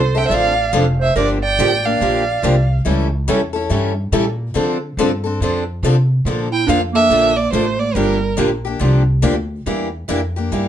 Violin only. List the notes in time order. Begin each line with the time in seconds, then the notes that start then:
Already playing: C5
0.18 G5
0.28 E5
0.34 F5
1.02 E5
1.17 D5
1.44 G5
1.85 F5
6.53 G5
6.69 F5
6.95 E5
7.37 D5
7.53 C5
7.79 D5
7.95 A#4